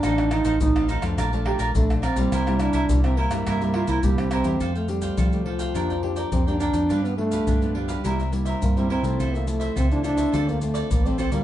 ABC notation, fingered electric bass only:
X:1
M:4/4
L:1/16
Q:1/4=105
K:F
V:1 name="Fingered electric bass" clef=bass
A,,,3 A,,, A,,,3 F,, B,,,3 B,,, B,,,3 =B,,, | C,,3 C,, C,,3 G,, G,,3 C,, C,,3 E,, | F,,4 F,4 F,,4 F,,3 F,, | G,,4 G,,4 C,,4 G,,3 C, |
C,,4 _D,,4 =D,,4 A,,,3 D,, |]